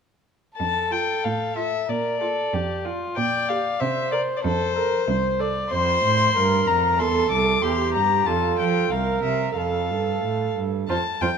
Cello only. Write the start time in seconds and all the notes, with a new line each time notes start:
0.60 F2
1.25 A2
1.89 A#2
2.53 F2
3.17 A#2
3.81 C3
4.44 F2
5.08 C2
5.72 F2
6.04 A2
6.36 G2
6.69 F2
7.00 E2
7.31 C2
7.63 E2
7.95 G2
8.27 F2
8.59 F3
8.91 C2
9.24 C3
9.56 F2
9.90 G2
10.23 A2
10.56 G2
10.89 F2
11.22 F2